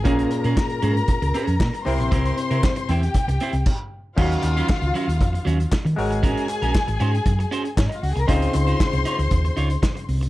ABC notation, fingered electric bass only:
X:1
M:4/4
L:1/16
Q:1/4=117
K:Ebdor
V:1 name="Fingered electric bass" clef=bass
B,,,2 z B,, z2 A,,2 z D,, z F,, B,, z C,, B,,, | C,,2 z C, z2 =E,,2 z C,, z C,, z4 | E,,2 E,,2 z D,, z E,, F,,2 E,,2 z E, A,,,2- | A,,,2 z B,,, z A,,, A,,2 G,,2 z2 A,, z D,, C,, |
D,,2 D,,2 z C,, z D,, E,,2 D,,2 z2 C,,2 |]